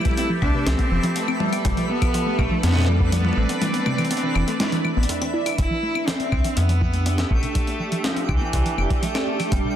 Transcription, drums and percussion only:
0.01 claves soft
0.05 kick loud
0.05 closed hi-hat medium
0.05 high tom medium
0.05 claves soft
0.11 high tom medium
0.11 claves soft
0.17 closed hi-hat medium
0.42 kick loud
0.42 claves medium
0.67 snare loud
0.67 closed hi-hat medium
0.79 kick medium
0.79 closed hi-hat soft
1.03 closed hi-hat soft
1.16 closed hi-hat medium
1.28 claves soft
1.40 high tom loud
1.53 closed hi-hat soft
1.53 claves soft
1.65 kick loud
1.65 closed hi-hat medium
1.65 high tom loud
1.77 closed hi-hat soft
2.02 kick loud
2.02 closed hi-hat medium
2.02 claves medium
2.14 closed hi-hat medium
2.39 kick loud
2.39 claves medium
2.63 snare medium
2.63 closed hi-hat medium
2.66 snare medium
2.70 snare medium
2.72 snare medium
2.76 snare medium
2.79 snare medium
2.82 snare medium
2.85 snare loud
3.00 kick medium
3.12 closed hi-hat medium
3.12 high tom soft
3.17 high tom medium
3.21 high tom medium
3.25 high tom medium
3.29 high tom medium
3.33 high tom medium
3.49 closed hi-hat medium
3.62 closed hi-hat medium
3.62 high tom loud
3.74 closed hi-hat soft
3.86 high tom medium
3.86 claves medium
3.98 closed hi-hat soft
3.98 claves medium
4.05 closed hi-hat soft
4.11 closed hi-hat medium
4.17 closed hi-hat soft
4.35 claves medium
4.48 closed hi-hat soft
4.60 snare loud
4.60 closed hi-hat medium
4.72 closed hi-hat soft
4.85 claves soft
5.03 closed hi-hat soft
5.09 closed hi-hat medium
5.22 closed hi-hat soft
5.22 claves medium
5.46 closed hi-hat medium
5.46 claves soft
5.49 claves soft
5.55 kick loud
5.55 closed hi-hat medium
5.55 claves soft
5.65 claves soft
5.68 claves soft
5.95 claves medium
6.08 snare loud
6.08 closed hi-hat medium
6.20 closed hi-hat soft
6.32 kick loud
6.32 claves medium
6.44 closed hi-hat medium
6.57 closed hi-hat medium
6.69 closed hi-hat soft
6.81 kick loud
6.94 closed hi-hat soft
7.06 closed hi-hat medium
7.18 snare loud
7.18 closed hi-hat soft
7.30 kick loud
7.43 closed hi-hat soft
7.55 kick loud
7.55 closed hi-hat medium
7.67 closed hi-hat soft
7.92 closed hi-hat soft
8.04 snare loud
8.04 closed hi-hat medium
8.16 closed hi-hat soft
8.29 kick loud
8.29 claves soft
8.53 kick medium
8.53 closed hi-hat medium
8.66 closed hi-hat soft
8.78 claves soft
8.90 kick loud
8.90 closed hi-hat soft
9.03 closed hi-hat medium
9.15 snare loud
9.15 closed hi-hat soft
9.15 claves soft
9.40 closed hi-hat soft
9.40 claves soft
9.52 kick loud
9.52 closed hi-hat medium

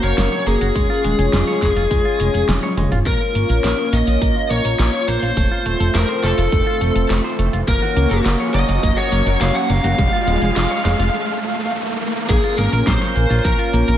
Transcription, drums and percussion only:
0.03 closed hi-hat medium
0.18 snare loud
0.18 closed hi-hat medium
0.47 closed hi-hat medium
0.61 closed hi-hat medium
0.75 kick loud
0.75 closed hi-hat medium
1.04 closed hi-hat medium
1.19 closed hi-hat medium
1.33 snare loud
1.33 closed hi-hat medium
1.62 kick medium
1.62 snare medium
1.62 closed hi-hat medium
1.77 closed hi-hat medium
1.91 kick loud
1.91 closed hi-hat medium
2.20 closed hi-hat medium
2.34 closed hi-hat medium
2.49 snare loud
2.49 closed hi-hat medium
2.63 high tom medium
2.77 closed hi-hat medium
2.77 mid tom medium
2.92 closed hi-hat medium
2.92 mid tom medium
3.06 kick loud
3.06 closed hi-hat medium
3.35 closed hi-hat medium
3.50 closed hi-hat medium
3.64 snare loud
3.64 closed hi-hat medium
3.93 closed hi-hat medium
4.07 closed hi-hat medium
4.22 kick loud
4.22 closed hi-hat medium
4.50 closed hi-hat medium
4.65 closed hi-hat medium
4.79 snare loud
4.79 closed hi-hat loud
5.08 closed hi-hat medium
5.23 closed hi-hat medium
5.37 kick loud
5.37 closed hi-hat loud
5.66 closed hi-hat medium
5.80 closed hi-hat medium
5.95 snare loud
5.95 closed hi-hat medium
6.24 snare medium
6.24 closed hi-hat medium
6.38 closed hi-hat medium
6.52 kick loud
6.52 closed hi-hat loud
6.81 closed hi-hat medium
6.96 closed hi-hat medium
7.10 snare loud
7.10 closed hi-hat medium
7.39 closed hi-hat medium
7.53 closed hi-hat medium
7.68 kick loud
7.68 closed hi-hat medium
7.97 closed hi-hat medium
8.11 closed hi-hat medium
8.25 snare loud
8.25 closed hi-hat medium
8.54 closed hi-hat medium
8.69 closed hi-hat medium
8.83 kick loud
8.83 closed hi-hat loud
9.12 closed hi-hat medium
9.26 closed hi-hat medium
9.41 snare loud
9.41 closed hi-hat medium
9.70 closed hi-hat medium
9.84 closed hi-hat medium
9.98 kick loud
9.98 closed hi-hat medium
10.27 closed hi-hat medium
10.42 closed hi-hat medium
10.56 snare loud
10.56 closed hi-hat medium
10.85 snare medium
10.85 closed hi-hat medium
10.99 closed hi-hat medium
12.29 kick loud
12.29 closed hi-hat loud
12.29 crash loud
12.29 shaker soft
12.44 closed hi-hat soft
12.44 shaker soft
12.58 closed hi-hat medium
12.58 shaker medium
12.73 closed hi-hat soft
12.73 shaker soft
12.87 kick loud
12.87 snare loud
12.87 closed hi-hat loud
12.87 shaker soft
13.01 closed hi-hat soft
13.01 shaker soft
13.16 closed hi-hat soft
13.16 shaker medium
13.30 closed hi-hat soft
13.30 shaker soft
13.45 kick loud
13.45 closed hi-hat loud
13.45 shaker soft
13.59 closed hi-hat soft
13.59 shaker soft
13.73 closed hi-hat medium
13.73 shaker medium
13.88 closed hi-hat soft
13.88 shaker soft

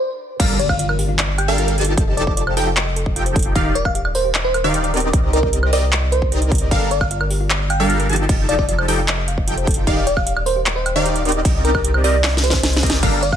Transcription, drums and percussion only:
0.40 kick loud
0.40 closed hi-hat medium
0.40 crash loud
0.60 closed hi-hat medium
0.69 kick medium
0.69 high woodblock medium
0.79 closed hi-hat medium
0.89 high woodblock medium
0.99 open hi-hat medium
1.19 clap loud
1.19 closed hi-hat medium
1.38 closed hi-hat medium
1.38 high woodblock medium
1.58 closed hi-hat medium
1.68 closed hi-hat medium
1.78 closed hi-hat medium
1.81 closed hi-hat medium
1.85 closed hi-hat medium
1.98 kick loud
1.98 closed hi-hat medium
2.17 closed hi-hat medium
2.27 kick medium
2.37 closed hi-hat medium
2.47 high woodblock medium
2.57 open hi-hat medium
2.77 clap loud
2.77 closed hi-hat medium
2.96 closed hi-hat medium
3.06 kick medium
3.16 closed hi-hat medium
3.26 closed hi-hat medium
3.36 kick loud
3.36 closed hi-hat soft
3.39 closed hi-hat medium
3.43 closed hi-hat medium
3.56 kick loud
3.56 closed hi-hat medium
3.75 closed hi-hat medium
3.85 kick medium
3.85 high woodblock medium
3.95 closed hi-hat medium
4.05 high woodblock medium
4.15 open hi-hat medium
4.35 clap loud
4.35 closed hi-hat medium
4.54 closed hi-hat medium
4.54 high woodblock medium
4.74 closed hi-hat medium
4.84 closed hi-hat medium
4.94 closed hi-hat soft
4.97 closed hi-hat medium
5.00 closed hi-hat medium
5.13 kick loud
5.13 closed hi-hat medium
5.33 closed hi-hat medium
5.43 kick medium
5.53 closed hi-hat medium
5.63 high woodblock medium
5.73 open hi-hat medium
5.92 clap loud
5.92 closed hi-hat medium
6.12 closed hi-hat medium
6.22 kick medium
6.32 closed hi-hat medium
6.42 closed hi-hat medium
6.52 kick loud
6.52 closed hi-hat soft
6.55 closed hi-hat medium
6.58 closed hi-hat medium
6.71 kick loud
6.71 closed hi-hat medium
6.71 crash soft
6.91 closed hi-hat medium
7.01 kick medium
7.01 high woodblock medium
7.11 closed hi-hat medium
7.21 high woodblock medium
7.31 open hi-hat medium
7.50 clap loud
7.50 closed hi-hat medium
7.70 closed hi-hat medium
7.70 high woodblock medium
7.90 closed hi-hat medium
8.00 closed hi-hat medium
8.10 closed hi-hat soft
8.13 closed hi-hat medium
8.16 closed hi-hat medium
8.29 kick loud
8.29 closed hi-hat medium
8.29 crash soft
8.49 closed hi-hat medium
8.59 kick medium
8.69 closed hi-hat medium
8.79 high woodblock medium
8.88 open hi-hat medium
9.08 clap loud
9.08 closed hi-hat medium
9.28 closed hi-hat medium
9.38 kick medium
9.48 closed hi-hat medium
9.58 closed hi-hat medium
9.67 kick loud
9.67 closed hi-hat medium
9.71 closed hi-hat medium
9.74 closed hi-hat medium
9.87 kick loud
9.87 closed hi-hat medium
9.87 crash soft
10.07 closed hi-hat medium
10.17 kick medium
10.17 high woodblock medium
10.27 closed hi-hat medium
10.37 high woodblock medium
10.46 open hi-hat loud
10.66 clap loud
10.66 closed hi-hat medium
10.86 closed hi-hat medium
10.86 high woodblock medium
11.06 closed hi-hat medium
11.16 closed hi-hat medium
11.25 closed hi-hat medium
11.29 closed hi-hat medium
11.32 closed hi-hat medium
11.45 kick loud
11.45 closed hi-hat medium
11.45 crash soft
11.65 closed hi-hat medium
11.75 kick medium
11.75 high woodblock medium
11.85 closed hi-hat medium
11.94 high woodblock medium
12.04 open hi-hat medium
12.24 snare medium
12.24 clap loud
12.24 closed hi-hat medium
12.37 snare medium
12.44 closed hi-hat medium
12.50 kick medium
12.50 snare medium
12.63 snare medium
12.63 closed hi-hat medium
12.73 snare loud
12.73 closed hi-hat medium
12.83 kick loud
12.83 closed hi-hat medium
12.86 snare loud
12.86 closed hi-hat medium
12.90 closed hi-hat medium
13.03 kick loud
13.03 closed hi-hat medium
13.03 crash medium
13.03 crash soft
13.23 closed hi-hat medium
13.32 kick medium
13.32 high woodblock medium

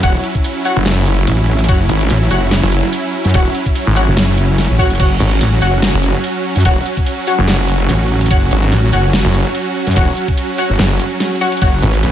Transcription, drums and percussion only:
0.03 kick loud
0.03 closed hi-hat medium
0.03 ride medium
0.24 closed hi-hat soft
0.35 kick medium
0.35 closed hi-hat soft
0.44 closed hi-hat medium
0.44 ride soft
0.65 closed hi-hat medium
0.86 snare loud
0.86 closed hi-hat medium
0.86 ride medium
1.06 closed hi-hat medium
1.27 closed hi-hat medium
1.27 ride soft
1.59 closed hi-hat soft
1.64 closed hi-hat medium
1.69 kick loud
1.69 closed hi-hat medium
1.69 ride medium
1.89 closed hi-hat medium
2.00 closed hi-hat soft
2.10 closed hi-hat medium
2.10 ride soft
2.31 closed hi-hat medium
2.51 snare loud
2.51 closed hi-hat medium
2.51 ride medium
2.72 closed hi-hat medium
2.93 closed hi-hat medium
2.93 ride soft
3.25 closed hi-hat soft
3.29 closed hi-hat medium
3.34 kick loud
3.34 closed hi-hat medium
3.34 ride medium
3.45 closed hi-hat soft
3.55 closed hi-hat medium
3.66 kick medium
3.66 closed hi-hat soft
3.75 closed hi-hat medium
3.75 ride soft
3.96 closed hi-hat medium
4.17 snare loud
4.17 closed hi-hat medium
4.17 ride medium
4.38 closed hi-hat medium
4.58 snare medium
4.58 closed hi-hat medium
4.58 ride medium
4.79 kick medium
4.90 closed hi-hat medium
4.95 closed hi-hat medium
5.00 kick loud
5.00 closed hi-hat medium
5.00 ride medium
5.00 crash medium
5.20 closed hi-hat medium
5.32 closed hi-hat soft
5.41 closed hi-hat medium
5.41 ride soft
5.62 closed hi-hat medium
5.82 snare loud
5.82 closed hi-hat medium
5.82 ride medium
6.03 closed hi-hat medium
6.24 closed hi-hat medium
6.24 ride soft
6.56 closed hi-hat medium
6.60 closed hi-hat medium
6.65 kick loud
6.65 closed hi-hat medium
6.65 ride medium
6.86 closed hi-hat medium
6.97 kick medium
6.97 closed hi-hat soft
7.06 closed hi-hat medium
7.06 ride soft
7.27 closed hi-hat medium
7.48 snare loud
7.48 closed hi-hat medium
7.48 ride medium
7.68 closed hi-hat medium
7.89 closed hi-hat medium
7.89 ride soft
8.21 closed hi-hat medium
8.26 closed hi-hat medium
8.31 kick loud
8.31 closed hi-hat medium
8.31 ride medium
8.51 closed hi-hat medium
8.63 closed hi-hat soft
8.72 closed hi-hat medium
8.72 ride soft
8.93 closed hi-hat medium
9.13 snare loud
9.13 closed hi-hat medium
9.13 ride medium
9.34 closed hi-hat medium
9.55 closed hi-hat medium
9.55 ride soft
9.87 closed hi-hat medium
9.91 closed hi-hat medium
9.96 kick loud
9.96 closed hi-hat medium
9.96 ride medium
10.17 closed hi-hat medium
10.28 kick medium
10.28 closed hi-hat soft
10.38 closed hi-hat medium
10.38 ride soft
10.58 closed hi-hat medium
10.79 snare loud
10.79 closed hi-hat medium
10.79 ride medium
11.00 closed hi-hat medium
11.20 snare medium
11.20 closed hi-hat medium
11.20 ride soft
11.52 closed hi-hat soft
11.57 closed hi-hat medium
11.62 kick loud
11.62 closed hi-hat medium
11.62 ride medium
11.82 closed hi-hat soft
11.94 closed hi-hat soft
12.03 closed hi-hat medium
12.03 ride soft

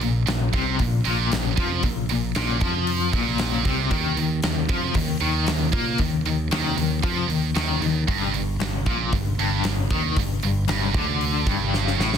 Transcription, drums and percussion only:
0.01 open hi-hat medium
0.27 snare loud
0.27 open hi-hat medium
0.53 kick loud
0.53 open hi-hat medium
0.79 kick medium
0.79 open hi-hat medium
1.05 open hi-hat medium
1.32 snare loud
1.32 open hi-hat medium
1.57 kick loud
1.57 open hi-hat medium
1.83 kick loud
1.83 open hi-hat medium
2.09 open hi-hat medium
2.35 snare loud
2.35 open hi-hat medium
2.61 kick loud
2.61 open hi-hat medium
2.87 open hi-hat medium
3.13 kick loud
3.13 open hi-hat medium
3.38 snare loud
3.38 open hi-hat medium
3.65 kick loud
3.65 open hi-hat medium
3.91 kick loud
3.91 open hi-hat medium
4.17 open hi-hat medium
4.42 snare loud
4.42 open hi-hat medium
4.69 kick loud
4.69 open hi-hat medium
4.94 kick medium
4.94 open hi-hat medium
5.20 open hi-hat medium
5.47 snare loud
5.47 open hi-hat medium
5.72 kick loud
5.72 open hi-hat medium
5.98 kick medium
5.98 open hi-hat medium
6.25 open hi-hat soft
6.51 snare loud
6.51 open hi-hat medium
6.78 open hi-hat medium
7.03 kick loud
7.03 open hi-hat medium
7.30 open hi-hat medium
7.55 snare loud
7.55 open hi-hat medium
7.82 open hi-hat medium
8.08 kick medium
8.08 open hi-hat medium
8.34 open hi-hat medium
8.60 snare loud
8.60 open hi-hat medium
8.86 kick loud
8.86 open hi-hat medium
9.13 kick loud
9.13 open hi-hat medium
9.39 open hi-hat medium
9.64 snare loud
9.64 open hi-hat medium
9.90 kick loud
9.90 open hi-hat medium
10.16 kick medium
10.16 open hi-hat medium
10.43 open hi-hat medium
10.68 snare loud
10.68 open hi-hat medium
10.94 kick loud
10.94 open hi-hat medium
11.21 open hi-hat medium
11.47 kick loud
11.47 open hi-hat medium
11.74 snare medium
11.87 snare medium
12.00 snare medium
12.14 snare medium

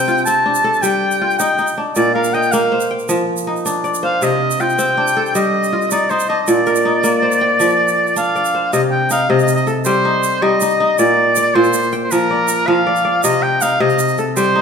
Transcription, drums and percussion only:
0.08 shaker soft
0.17 shaker soft
0.26 shaker medium
0.55 shaker medium
0.74 shaker soft
0.83 shaker medium
1.11 shaker soft
1.31 shaker soft
1.40 shaker medium
1.58 shaker soft
1.67 shaker soft
1.96 shaker medium
2.24 shaker soft
2.34 shaker soft
2.43 shaker soft
2.52 shaker medium
2.80 shaker soft
2.99 shaker soft
3.09 shaker medium
3.37 shaker soft
3.56 shaker soft
3.66 shaker medium
3.84 shaker soft
3.94 shaker medium
4.22 shaker medium
4.51 shaker soft
4.60 shaker soft
4.70 shaker soft
4.79 shaker medium
5.07 shaker soft
5.26 shaker soft
5.35 shaker medium
5.64 shaker soft
5.82 shaker soft
5.91 shaker medium
6.10 shaker soft
6.20 shaker soft
6.47 shaker medium
6.66 shaker soft
6.76 shaker soft
7.04 shaker medium
7.32 shaker soft
7.60 shaker medium
7.69 shaker soft
7.88 shaker soft
8.07 shaker soft
8.16 shaker medium
8.36 shaker soft
8.45 shaker soft
8.73 shaker medium
9.10 shaker medium
9.39 shaker soft
9.48 shaker medium
9.57 shaker soft
9.67 shaker soft
9.85 shaker medium
10.23 shaker medium
10.61 shaker medium
10.70 shaker soft
10.98 shaker medium
11.36 shaker medium
11.64 shaker soft
11.73 shaker medium
11.83 shaker soft
11.92 shaker soft
12.11 shaker medium
12.48 shaker medium
12.96 shaker soft
13.23 shaker medium
13.61 shaker medium
13.90 shaker soft
13.99 shaker medium
14.08 shaker soft
14.18 shaker soft
14.37 shaker medium

